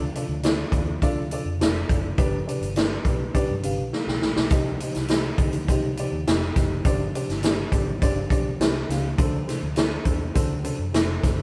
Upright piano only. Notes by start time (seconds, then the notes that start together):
0.15 D4 F4 A4 D5
0.43 D4 F4 A4 D5
0.73 D4 F4 A4 D5
1.02 D4 F4 A4 D5
1.32 D4 F4 A4 D5
1.60 D4 F4 A4 D5
1.89 D4 F4 A4 D5
2.18 D4 G4 B4 D5
2.47 D4 G4 B4 D5
2.76 D4 G4 B4 D5
3.06 D4 G4 B4 D5
3.34 D4 G4 B4 D5
3.63 D4 G4 B4 F5
3.93 F5
4.08 G5
4.22 B5
4.38 D6
4.51 D#4 G4 C5 D#5
4.81 D#4 G4 C5 D#5
5.10 D#4 G4 C5 D#5
5.40 D#4 G4 C5 D#5
5.69 D#4 G4 C5 D#5
5.98 D#4 G4 C5 D5
6.27 D#4 G4 C5 D#5
6.56 D#4 G4 C5 D#5
6.85 D4 G4 C5 D5
7.15 D4 G4 C5 D5
7.44 D4 G4 C5 D5
7.74 D4 G4 C5 D5
8.02 D4 G4 C5 D5
8.31 D4 G4 C5 D5
8.60 D4 G4 C5 D5
8.89 D4 G4 C5 F5
9.18 D4 F#4 A4 C5
9.47 D4 F#4 A4 C5
9.77 D4 F#4 A4 C5
10.05 D4 F#4 A4 C5
10.34 D4 F#4 A4 C5
10.63 D4 F#4 A4 C5
10.93 D4 F#4 A4 C5
11.22 D4 F#4 A4 C5